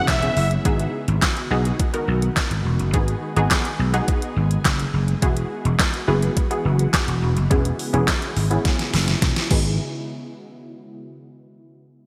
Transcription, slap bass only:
0.08 0.28 E1 loud
0.36 0.56 F#1 medium
0.65 0.85 G#1 medium
1.08 1.18 G#1 loud
1.51 1.71 B1 medium
2.08 2.28 B1 medium
2.51 2.61 G#1 medium
2.65 2.75 E1 medium
2.79 2.89 F#1 medium
2.94 3.14 G#1 loud
3.36 3.46 G#1 medium
3.79 3.99 B1 medium
4.36 4.56 G#1 medium
4.65 4.85 F#1 medium
4.94 5.14 F#1 medium
5.22 5.42 E1 loud
5.65 5.75 E1 loud
6.08 6.28 F#1 medium
6.65 6.85 F#1 medium
7.08 7.18 E1 medium
7.22 7.32 E1 medium
7.37 7.46 F#1 medium
7.51 7.71 E1 loud
7.94 8.04 E1 loud
8.36 8.56 G#1 medium
8.94 9.14 F#1 loud
9.22 9.32 E1 medium
9.51 9.77 G#1 medium

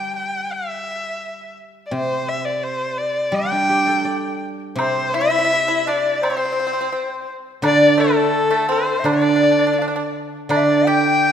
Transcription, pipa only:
4.79 5.12 C4 medium
5.14 5.20 E4 medium
5.21 5.28 E4 medium
5.30 5.37 E4 medium
5.38 5.43 E4 medium
5.45 5.52 E4 medium
5.53 5.60 E4 medium
5.68 5.85 E4 medium
5.87 6.20 D4 medium
6.23 6.29 C4 medium
6.30 6.35 C4 soft
6.37 6.44 C4 soft
6.45 6.51 C4 soft
6.52 6.58 C4 soft
6.60 6.66 C4 soft
6.67 6.72 C4 soft
6.73 6.80 C4 soft
6.81 6.88 C4 medium
6.92 7.26 C4 medium
7.63 7.96 D4 medium
7.98 8.48 A3 medium
8.51 8.68 A3 medium
8.69 9.03 C4 medium
9.05 9.12 D4 medium
9.13 9.20 D4 soft
9.22 9.28 D4 soft
9.36 9.42 D4 soft
9.43 9.50 D4 soft
9.52 9.58 D4 soft
9.59 9.65 D4 soft
9.67 9.72 D4 medium
9.73 9.80 D4 soft
9.82 9.87 D4 medium
9.88 9.95 D4 soft
9.96 10.03 D4 medium
10.50 10.84 D4 medium
10.87 11.32 G4 medium

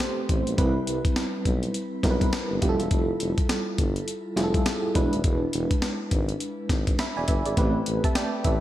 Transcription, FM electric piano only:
0.00 0.60 A3 medium
0.00 0.58 C4 medium
0.00 0.59 G4 medium
0.00 0.59 B4 medium
0.00 0.27 C5 medium
0.57 1.34 G3 medium
0.57 1.34 C4 medium
0.57 1.34 E4 medium
0.57 1.35 B4 medium
2.03 2.59 G3 medium
2.03 2.59 C4 medium
2.03 2.59 E4 medium
2.03 2.12 A#4 medium
2.11 2.63 B4 medium
2.61 3.56 G3 medium
2.61 3.56 E4 medium
2.61 3.57 F4 medium
2.61 2.70 G4 medium
2.69 3.60 A4 loud
4.36 4.92 G3 medium
4.36 4.92 E4 medium
4.36 4.93 F4 medium
4.36 4.45 G#4 medium
4.44 4.96 A4 loud
4.95 5.89 G#3 medium
4.95 5.89 D4 medium
4.95 5.90 E4 medium
4.95 5.90 B4 medium
6.99 7.16 E5 medium
6.99 7.16 B5 medium
7.17 7.28 D5 medium
7.17 7.28 G#5 medium
7.29 7.45 B4 medium
7.29 7.45 E5 medium
7.46 7.74 G#4 medium
7.46 7.74 D5 medium
7.57 8.33 A3 medium
7.57 8.33 C4 medium
7.57 7.87 G4 medium
7.57 7.87 B4 medium
8.04 8.15 E5 medium
8.04 8.15 A5 medium
8.16 8.44 D5 medium
8.16 8.43 G5 medium
8.45 8.60 B4 medium
8.45 8.60 E5 medium

